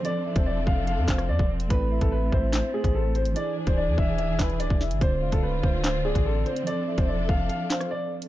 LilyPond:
<<
  \new Staff \with { instrumentName = "Soft synth lead" } { \time 4/4 \key f \lydian \tempo 4 = 145 r8 e''2 f''8 r4 | r8 e''2 c''4. | r8 d''2 e''8 d''8 e''8 | r8 f''2 d''4. |
r8 e''2 f''8 r4 | }
  \new Staff \with { instrumentName = "Grand piano" } { \time 4/4 \key f \lydian d''8. c''16 d''8 f''8 f''8 c''8 d''8 r8 | b'8. a'16 b'8 c''8 c''8 gis'8 a'8 c''8 | d''8. c''16 d''8 e''8 e''8 b'8 d''8 r8 | c''8. a'16 b'8 c''8 c''8 gis'8 a'8 c''8 |
d''8. c''16 d''8 f''8 f''8 c''8 d''8 r8 | }
  \new Staff \with { instrumentName = "Tine electric piano" } { \time 4/4 \key f \lydian <f c' a' d''>1 | <a c' e' a'>1 | <e e' gis' d''>1 | <d c' f' d''>1 |
<f c' a' d''>1 | }
  \new Staff \with { instrumentName = "String section" } { \time 4/4 \key f \lydian << { <f a'>1 | a1 | <e gis'>1 | <d a f'>1 |
<f a'>1 | } \\ { <c' d'>1~ | <c' d'>1 | d'1 | c'1 |
d'1 | } >> }
  \new Staff \with { instrumentName = "808-style bass" } { \clef bass \time 4/4 \key f \lydian r8. e,,8. f,,8. f,16 f,,8 f,16 e,,8. | a,,8. a,,8. a,,8. r8 a,,4 gis,,16 | r8. d,,8 e,16 e,,8 d,,16 e,,16 e,,8 d,,16 e,,8 gis,,16 | d,,8 e,,16 d,,8. d,,4~ d,,16 a,,8. r8 |
r8. e,,8. f,,8 r2 | }
  \new DrumStaff \with { instrumentName = "Drums" } \drummode { \time 4/4 hh8. <hh bd>16 r8 bd8 hh8 <hc hh bd sn>16 <hh ss>16 r16 bd8 hh16 | <hh bd>8. <hh bd>16 r8 bd8 <hc hh sn>8. <hh bd>16 r8 hh16 hh16 | hh8. <hh bd>16 r8 bd8 hh8 <hc hh bd sn>16 hh16 hh16 bd16 sn16 hh16 | <hh bd>8. <hh bd>16 r8 bd8 <hc hh sn>8. <hh bd>16 r8 hh16 hh16 |
hh8. <hh bd>16 r8 bd8 hh8 <hc hh sn>16 <hh ss>16 r8. hh16 | }
>>